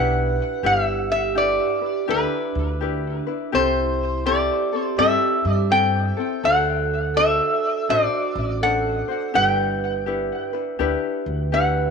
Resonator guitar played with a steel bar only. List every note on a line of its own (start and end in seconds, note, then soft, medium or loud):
0.00 0.66 F#5 loud
0.66 0.84 F5 medium
0.84 1.10 E5 medium
1.12 1.37 E5 medium
1.38 2.10 D5 medium
2.11 3.54 B4 medium
3.55 4.26 C5 medium
4.27 4.82 D5 loud
4.82 4.98 C5 loud
4.99 5.54 E5 loud
5.54 5.71 D5 loud
5.72 6.45 G5 loud
6.45 7.16 F#5 loud
7.17 7.90 E5 loud
7.90 8.58 D5 loud
8.63 9.35 F#5 loud
9.35 9.46 F#5 loud
9.46 11.90 G5 loud
11.54 11.90 F#5 medium